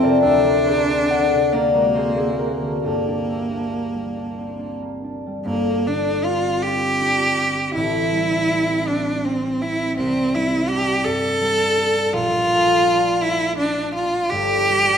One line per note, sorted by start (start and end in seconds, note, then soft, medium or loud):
0.00 0.27 F2 medium
0.00 0.27 C3 medium
0.00 0.27 A3 medium
0.00 0.23 C4 medium
0.00 0.66 C4 medium
0.00 0.26 A4 medium
0.00 0.44 A#4 medium
0.00 0.22 C5 medium
0.00 0.38 D5 loud
0.00 0.21 E5 medium
0.00 0.27 F5 loud
0.00 0.27 G5 loud
0.00 0.26 A5 loud
0.23 2.88 D2 medium
0.23 1.54 D4 loud
0.23 0.65 C5 medium
0.23 0.59 E5 loud
0.45 0.88 A#3 medium
0.45 1.53 A#4 medium
0.45 0.82 D5 loud
0.66 1.04 C4 medium
0.66 1.96 G#4 medium
0.66 1.94 C5 loud
0.89 1.53 A#3 medium
1.10 2.61 D3 medium
1.10 1.51 D5 medium
1.10 2.87 F#5 loud
1.32 2.87 C3 medium
1.52 2.83 A#3 medium
1.52 1.95 A#3 medium
1.52 1.73 A#4 medium
1.52 5.42 D5 loud
1.74 2.11 G#3 medium
1.74 2.17 F#4 medium
1.74 2.11 A#4 medium
1.95 2.39 A#3 medium
1.95 2.16 G#4 medium
1.95 2.87 C5 loud
2.17 2.88 E4 medium
2.17 2.39 F#4 soft
2.17 2.55 G#4 medium
2.39 3.72 A#3 soft
2.39 2.88 F#4 medium
2.39 6.29 A#4 medium
2.62 2.88 D3 soft
2.84 5.44 G1 medium
2.84 5.45 G2 medium
2.84 4.77 A#3 medium
2.84 3.06 D4 medium
2.84 6.75 G4 medium
3.07 3.50 D4 medium
3.29 3.66 E4 soft
3.51 4.15 D4 soft
3.73 4.81 A#3 medium
3.94 5.25 G3 soft
4.16 4.58 D4 medium
4.38 4.75 C4 soft
4.59 5.03 D4 soft
4.82 7.79 A#3 soft
5.04 7.00 D4 soft
5.26 8.11 G3 soft
5.45 7.78 G1 medium
5.45 7.79 G2 medium
5.45 5.88 A#3 medium
5.87 7.79 D3 medium
5.87 6.26 D4 medium
6.24 8.49 C4 medium
6.24 6.64 F4 medium
6.63 7.37 F4 medium
6.63 7.74 G4 loud
7.01 7.79 D4 medium
7.38 7.78 F4 soft
7.75 10.01 A1 medium
7.75 10.01 A2 medium
7.75 8.89 E4 loud
8.12 10.34 G3 medium
8.50 9.24 C4 medium
8.87 9.26 D4 medium
8.87 9.59 E4 medium
9.25 9.63 C4 medium
9.25 11.08 C4 medium
9.61 10.70 E4 medium
9.61 9.97 E4 medium
9.98 11.08 C2 medium
9.98 10.36 C4 loud
10.35 11.40 G3 medium
10.35 10.71 E4 medium
10.69 11.76 D4 soft
10.69 11.09 E4 medium
10.69 11.06 G4 loud
11.04 12.16 G2 medium
11.04 12.14 A4 loud
11.41 12.16 G3 medium
11.77 12.85 D4 soft
11.77 12.17 G4 medium
12.13 14.34 A#1 medium
12.13 14.34 A#2 medium
12.13 13.24 F4 loud
12.50 14.34 A3 medium
12.86 13.57 D4 medium
13.22 13.58 E4 loud
13.22 13.95 F4 medium
13.58 14.34 D4 medium
13.58 13.94 D4 loud
13.95 14.32 F4 loud
13.95 14.98 F4 medium
14.30 14.98 G1 medium
14.30 14.98 G2 medium
14.30 14.98 G4 loud
14.69 14.98 G3 medium